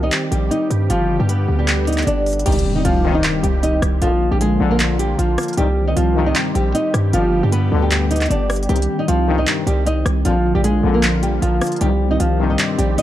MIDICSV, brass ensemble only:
0, 0, Header, 1, 2, 480
1, 0, Start_track
1, 0, Key_signature, -3, "minor"
1, 0, Tempo, 389610
1, 1109, Time_signature, 4, 2, 24, 8
1, 16043, End_track
2, 0, Start_track
2, 0, Title_t, "Brass ensemble"
2, 0, Program_c, 0, 61
2, 3028, Note_on_c, 0, 43, 83
2, 3028, Note_on_c, 0, 48, 89
2, 3028, Note_on_c, 0, 51, 89
2, 3136, Note_off_c, 0, 43, 0
2, 3136, Note_off_c, 0, 48, 0
2, 3136, Note_off_c, 0, 51, 0
2, 3748, Note_on_c, 0, 43, 97
2, 3748, Note_on_c, 0, 51, 116
2, 3749, Note_on_c, 0, 48, 99
2, 4204, Note_off_c, 0, 43, 0
2, 4204, Note_off_c, 0, 51, 0
2, 4205, Note_off_c, 0, 48, 0
2, 4948, Note_on_c, 0, 41, 90
2, 4949, Note_on_c, 0, 46, 79
2, 4949, Note_on_c, 0, 50, 93
2, 5057, Note_off_c, 0, 41, 0
2, 5057, Note_off_c, 0, 46, 0
2, 5057, Note_off_c, 0, 50, 0
2, 5668, Note_on_c, 0, 41, 106
2, 5668, Note_on_c, 0, 46, 97
2, 5668, Note_on_c, 0, 50, 113
2, 6124, Note_off_c, 0, 41, 0
2, 6124, Note_off_c, 0, 46, 0
2, 6124, Note_off_c, 0, 50, 0
2, 6869, Note_on_c, 0, 43, 95
2, 6869, Note_on_c, 0, 48, 83
2, 6869, Note_on_c, 0, 51, 95
2, 6977, Note_off_c, 0, 43, 0
2, 6977, Note_off_c, 0, 48, 0
2, 6977, Note_off_c, 0, 51, 0
2, 7589, Note_on_c, 0, 43, 97
2, 7589, Note_on_c, 0, 48, 103
2, 7589, Note_on_c, 0, 51, 117
2, 8045, Note_off_c, 0, 43, 0
2, 8045, Note_off_c, 0, 48, 0
2, 8045, Note_off_c, 0, 51, 0
2, 8788, Note_on_c, 0, 43, 85
2, 8788, Note_on_c, 0, 47, 87
2, 8788, Note_on_c, 0, 50, 90
2, 8896, Note_off_c, 0, 43, 0
2, 8896, Note_off_c, 0, 47, 0
2, 8896, Note_off_c, 0, 50, 0
2, 9508, Note_on_c, 0, 43, 100
2, 9508, Note_on_c, 0, 47, 91
2, 9508, Note_on_c, 0, 50, 109
2, 9964, Note_off_c, 0, 43, 0
2, 9964, Note_off_c, 0, 47, 0
2, 9964, Note_off_c, 0, 50, 0
2, 10707, Note_on_c, 0, 48, 87
2, 10707, Note_on_c, 0, 51, 90
2, 10708, Note_on_c, 0, 43, 82
2, 10816, Note_off_c, 0, 43, 0
2, 10816, Note_off_c, 0, 48, 0
2, 10816, Note_off_c, 0, 51, 0
2, 11428, Note_on_c, 0, 43, 96
2, 11428, Note_on_c, 0, 48, 102
2, 11428, Note_on_c, 0, 51, 120
2, 11884, Note_off_c, 0, 43, 0
2, 11884, Note_off_c, 0, 48, 0
2, 11884, Note_off_c, 0, 51, 0
2, 12628, Note_on_c, 0, 41, 90
2, 12628, Note_on_c, 0, 46, 80
2, 12628, Note_on_c, 0, 50, 94
2, 12736, Note_off_c, 0, 41, 0
2, 12737, Note_off_c, 0, 46, 0
2, 12737, Note_off_c, 0, 50, 0
2, 13348, Note_on_c, 0, 41, 107
2, 13348, Note_on_c, 0, 46, 98
2, 13348, Note_on_c, 0, 50, 113
2, 13804, Note_off_c, 0, 41, 0
2, 13804, Note_off_c, 0, 46, 0
2, 13804, Note_off_c, 0, 50, 0
2, 14548, Note_on_c, 0, 43, 89
2, 14549, Note_on_c, 0, 48, 86
2, 14549, Note_on_c, 0, 51, 98
2, 14657, Note_off_c, 0, 43, 0
2, 14657, Note_off_c, 0, 48, 0
2, 14657, Note_off_c, 0, 51, 0
2, 15269, Note_on_c, 0, 43, 96
2, 15269, Note_on_c, 0, 48, 102
2, 15269, Note_on_c, 0, 51, 111
2, 15725, Note_off_c, 0, 43, 0
2, 15725, Note_off_c, 0, 48, 0
2, 15725, Note_off_c, 0, 51, 0
2, 16043, End_track
0, 0, End_of_file